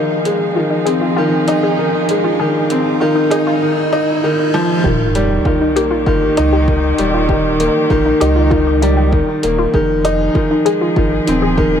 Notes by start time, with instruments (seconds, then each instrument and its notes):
Already playing: upright piano D#3, string quartet F3 D#4 F5, riser
0.06 string quartet G#4
0.25 upright piano G#3, closed hi-hat
0.56 upright piano D#3, synth arpeggio sound F4
0.70 synth arpeggio sound D#4
0.85 upright piano C4, synth arpeggio sound G#4, closed hi-hat
1.01 synth arpeggio sound F4
1.16 upright piano D#3, synth arpeggio sound F4
1.48 synth arpeggio sound D#4, upright piano D#4, closed hi-hat
1.63 synth arpeggio sound G#4
1.79 upright piano D#3
2.09 upright piano G#3, closed hi-hat
2.24 synth arpeggio sound F4
2.40 upright piano D#3, synth arpeggio sound G#4
2.70 upright piano C4, closed hi-hat
3.00 upright piano D#3, synth arpeggio sound F4
3.15 synth arpeggio sound D#4
3.31 upright piano D#4, synth arpeggio sound G#4, closed hi-hat
3.47 synth arpeggio sound F4
3.62 upright piano D#3
3.93 upright piano D#4
4.24 upright piano D#3
4.54 upright piano F3
4.83 sub bass D#1, string quartet D#3, upright piano D#3, synth arpeggio sound G4, kick, sub drop
5.15 upright piano G3, closed hi-hat
5.32 string quartet G4
5.45 upright piano D#3, synth arpeggio sound F4, kick
5.61 synth arpeggio sound D#4
5.76 upright piano A#3, synth arpeggio sound G4, closed hi-hat
5.91 synth arpeggio sound F4
6.06 sub bass G1, upright piano D#3, synth arpeggio sound F4, kick
6.37 sub bass C#2, upright piano D#4, synth arpeggio sound D#4, closed hi-hat
6.53 synth arpeggio sound G4
6.68 upright piano D#3, kick
6.98 sub bass D#1, upright piano G3, closed hi-hat
7.14 synth arpeggio sound F4
7.29 upright piano D#3, synth arpeggio sound G4, kick
7.60 upright piano A#3, closed hi-hat
7.90 sub bass A#1, upright piano D#3, synth arpeggio sound F4, kick
8.06 synth arpeggio sound D#4
8.20 sub bass C#2, upright piano D#4, synth arpeggio sound G4, closed hi-hat
8.36 synth arpeggio sound F4
8.50 upright piano D#3, synth arpeggio sound F4, kick
8.82 upright piano G3, synth arpeggio sound D#4, closed hi-hat
8.97 synth arpeggio sound G4
9.12 upright piano D#3, kick
9.43 sub bass D#1, upright piano A#3, closed hi-hat
9.58 synth arpeggio sound F4
9.74 sub bass F1, upright piano D#3, string quartet F3, synth arpeggio sound G#4, kick
10.05 upright piano D#4, closed hi-hat
10.09 string quartet G#4
10.35 upright piano D#3, synth arpeggio sound F4, kick
10.51 synth arpeggio sound D#4
10.65 upright piano G#3, synth arpeggio sound G#4, closed hi-hat
10.81 synth arpeggio sound F4
10.96 sub bass G#1, upright piano D#3, synth arpeggio sound F4, kick
11.27 sub bass D#1, upright piano C4, synth arpeggio sound D#4, closed hi-hat
11.42 synth arpeggio sound G#4
11.57 upright piano D#3, kick